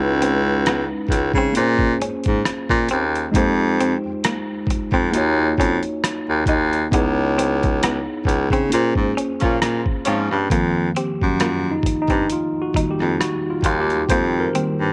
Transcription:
Already playing: baritone saxophone C#2, tine electric piano G#3 C#4 D#4 E4 B4
0.22 clean electric guitar C4, closed hi-hat
0.66 clean electric guitar B3, cross-stick, closed hi-hat
1.09 baritone saxophone C#2, kick, closed hi-hat
1.14 muted clean electric guitar stroke
1.33 baritone saxophone C#3, kick
1.38 clean electric guitar C4
1.53 baritone saxophone A#2, tine electric piano A#3 C4 F4, closed hi-hat
1.57 tine electric piano C#4 G#4 C5
1.79 kick
2.01 baritone saxophone G#2, clean electric guitar C#4, closed hi-hat
2.24 baritone saxophone G#2, kick, closed hi-hat
2.45 cross-stick, closed hi-hat
2.69 baritone saxophone A#2, kick
2.89 baritone saxophone D#2, clean electric guitar C4, closed hi-hat
3.15 closed hi-hat
3.32 baritone saxophone F2, tine electric piano G#3 D#4 F4, kick, closed hi-hat
3.36 clean electric guitar A#3, tine electric piano G4 C5
3.80 clean electric guitar C4, closed hi-hat
4.05 baritone saxophone F2
4.24 clean electric guitar A#3, cross-stick, closed hi-hat
4.67 baritone saxophone F2, muted clean electric guitar stroke, kick, closed hi-hat
4.92 baritone saxophone F2, clean electric guitar C4, kick
5.11 baritone saxophone D#2, tine electric piano A#3 D#4 F4, closed hi-hat
5.16 tine electric piano F#4 C#5
5.58 baritone saxophone F2, clean electric guitar C#4, kick, closed hi-hat
5.83 closed hi-hat
6.04 cross-stick, closed hi-hat
6.29 baritone saxophone D#2
6.46 baritone saxophone D#2, clean electric guitar D#4, kick, closed hi-hat
6.73 closed hi-hat
6.91 baritone saxophone C#2, tine electric piano B3 D#4 E4, clean electric guitar B3, kick, closed hi-hat
6.95 tine electric piano G#4 C#5
7.38 clean electric guitar C4, closed hi-hat
7.63 kick, closed hi-hat
7.83 clean electric guitar B3, cross-stick, closed hi-hat
8.25 baritone saxophone C#2, muted clean electric guitar stroke, kick, closed hi-hat
8.50 baritone saxophone C#3, clean electric guitar C4, kick, closed hi-hat
8.69 baritone saxophone A#2, tine electric piano A#3 C#4 F4, closed hi-hat
8.74 tine electric piano G#4 C5
8.95 baritone saxophone G#2, kick
9.17 clean electric guitar C#4, closed hi-hat
9.40 baritone saxophone A#2, horn section F3 C#4 F4, kick, cross-stick, closed hi-hat
9.62 baritone saxophone A#2, cross-stick, closed hi-hat
9.86 kick
10.05 baritone saxophone G#2, horn section F3 C#4 F4, clean electric guitar C4, closed hi-hat
10.31 baritone saxophone G2, cross-stick
10.50 baritone saxophone F2, tine electric piano D#3 F3 A#3, clean electric guitar A#3, kick, closed hi-hat
10.96 clean electric guitar C4, tine electric piano G4, closed hi-hat
11.22 baritone saxophone F#2, kick
11.40 clean electric guitar A#3, tine electric piano F4, cross-stick, closed hi-hat
11.72 tine electric piano D#4
11.83 baritone saxophone G2, muted clean electric guitar stroke, kick, closed hi-hat
12.02 tine electric piano D#4
12.08 baritone saxophone G2, clean electric guitar C4, kick, closed hi-hat
12.30 tine electric piano F4, closed hi-hat
12.62 tine electric piano F#4
12.74 baritone saxophone F2, tine electric piano D#3 G3 A#3, clean electric guitar D#4, kick, closed hi-hat
12.91 tine electric piano G4
13.00 baritone saxophone F2, cross-stick
13.20 tine electric piano F#4, cross-stick, closed hi-hat
13.50 tine electric piano F4
13.63 baritone saxophone D#2, clean electric guitar F4, kick, closed hi-hat
13.81 tine electric piano G4
13.90 closed hi-hat
14.09 baritone saxophone F2, clean electric guitar A#3, tine electric piano C5, kick, closed hi-hat
14.40 tine electric piano A#4
14.54 tine electric piano D#3 G3 A#3, clean electric guitar C4, closed hi-hat
14.80 baritone saxophone G2

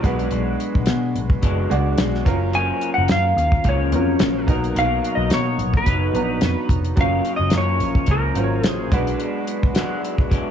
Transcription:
0.03 picked electric bass B1, clean electric guitar F#3 G#3 D4, upright piano G#3 D4 F#4 B4, kick, closed hi-hat
0.08 clean electric guitar B2
0.19 closed hi-hat
0.31 picked electric bass B1, closed hi-hat
0.60 closed hi-hat
0.75 picked electric bass B1, kick
0.86 picked electric bass B2, snare, closed hi-hat
1.16 picked electric bass B1, closed hi-hat
1.30 kick
1.42 picked electric bass F#1, clean electric guitar B2 F#3 G#3 D4, kick, closed hi-hat
1.70 picked electric bass C#2, upright piano G#3 D4 F#4 D5, closed hi-hat
1.98 picked electric bass B1, snare, closed hi-hat
2.15 snare
2.25 picked electric bass F#1, clean electric guitar F3 A#3 C#4, upright piano F#3 C#4 F4 A#4, kick, closed hi-hat
2.52 clean electric guitar F#2 C#3 F3, electric slide guitar G#5, closed hi-hat
2.56 clean electric guitar A#3 C#4
2.81 closed hi-hat
2.94 electric slide guitar F#5
2.98 picked electric bass F#1
3.08 picked electric bass F#2, electric slide guitar F5, snare, closed hi-hat
3.37 picked electric bass D#2, closed hi-hat
3.52 kick
3.64 picked electric bass C#2, clean electric guitar F#2 C#3 F3 A#3 C#4, kick, closed hi-hat
3.69 electric slide guitar C#5
3.92 picked electric bass F2, upright piano F#3 C#4 F4 A#4, closed hi-hat
4.19 picked electric bass A#1, snare, closed hi-hat
4.47 picked electric bass B1, upright piano F#3 B3 D#4 A#4, clean electric guitar A#3 D#4, kick, closed hi-hat
4.51 clean electric guitar F#3
4.64 closed hi-hat
4.75 picked electric bass B1, clean electric guitar B2 F#3 A#3, electric slide guitar F5, closed hi-hat
4.80 clean electric guitar D#4
5.04 closed hi-hat
5.15 picked electric bass B1, electric slide guitar D#5
5.30 picked electric bass B2, electric slide guitar C#5, snare, closed hi-hat
5.58 picked electric bass B1, closed hi-hat
5.74 electric slide guitar B4, kick
5.83 picked electric bass F#1, clean electric guitar B2 F#3, kick, closed hi-hat
5.90 clean electric guitar D#4
6.13 picked electric bass A#1, upright piano F#3 B3 D4 A#5, closed hi-hat
6.22 upright piano D#4
6.41 picked electric bass F2, snare, closed hi-hat
6.69 picked electric bass F1, kick, closed hi-hat
6.84 closed hi-hat
6.96 picked electric bass F#1, clean electric guitar F#2 C#3 F3 A#3 C#4, upright piano F#3 C#4 F4 A#4, kick, closed hi-hat
7.01 electric slide guitar F5
7.25 closed hi-hat
7.36 picked electric bass F#1, electric slide guitar D#5
7.50 picked electric bass F#2, clean electric guitar C#3 F3, snare, closed hi-hat
7.55 clean electric guitar A#3 C#4, electric slide guitar C#5
7.80 picked electric bass A#1, closed hi-hat
7.95 kick
8.06 picked electric bass C#2, clean electric guitar F#2 C#3 F3 A#3 C#4, kick, closed hi-hat
8.11 electric slide guitar A#4
8.35 picked electric bass G#1, upright piano F#3 C#4 F4 C5, closed hi-hat
8.44 upright piano C#5
8.63 picked electric bass A#1, snare, closed hi-hat
8.67 electric slide guitar G#4
8.92 picked electric bass B1, clean electric guitar B2 F#3 G#3 D4, upright piano G#3 D4 F#4 B4, kick, closed hi-hat
9.07 closed hi-hat
9.20 closed hi-hat
9.47 closed hi-hat
9.63 kick
9.74 clean electric guitar B2 F#3 G#3 D4, snare, closed hi-hat
10.04 closed hi-hat
10.18 kick
10.30 clean electric guitar B2 F#3 G#3 D4, kick, closed hi-hat

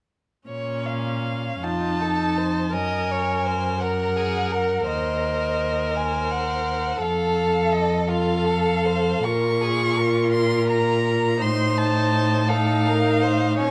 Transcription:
0.48 cello A#2, viola C#4, violin C#5
0.85 violin F5
1.62 cello F2, viola D#4, violin F4 A5
2.01 violin A4
2.37 violin C5
2.73 cello F#2, viola A#4, violin D#5 G#5
3.11 violin C#5
3.45 violin C5
3.80 violin A#4 F#5, viola A#4
4.17 violin G#4
4.51 violin A#4
4.86 cello D#2, viola A#4, violin C5 D#5
5.94 violin C5 G#5
6.31 violin F#5
7.01 cello F2, viola A4, violin A4 F5
7.72 violin D#5
8.08 violin F4 F5, viola A4
8.45 violin A4
8.86 violin C5
9.24 cello A#2, viola F4, violin A#4 C#6
9.62 violin G#4
9.97 violin A#4
10.32 violin C6
10.69 violin A#5
11.41 cello A2, viola D#4, violin C5 C6
11.77 violin A5
12.49 viola D#4, violin A4 F5
12.87 violin A#4
13.22 violin C5
13.58 cello A#2, viola C#4, violin C#5 G#5

